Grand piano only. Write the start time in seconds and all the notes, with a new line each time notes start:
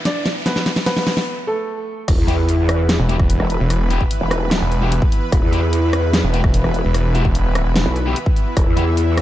0.05 D4 D5
0.46 B3 B4
0.86 B3 B4
1.47 A3 A4